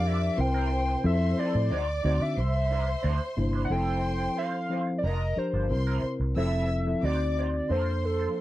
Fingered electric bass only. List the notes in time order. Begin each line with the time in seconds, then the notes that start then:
Already playing: F2
0.38 C2
1.04 F2
1.55 A2
1.71 D2
2.05 D2
2.21 D3
2.37 C2
3.04 D2
3.37 G1
3.70 F1
5.04 F1
5.37 muted fingered electric bass stroke
5.53 G1
5.70 C2
6.20 C2
6.37 F1
7.03 D2
7.70 F2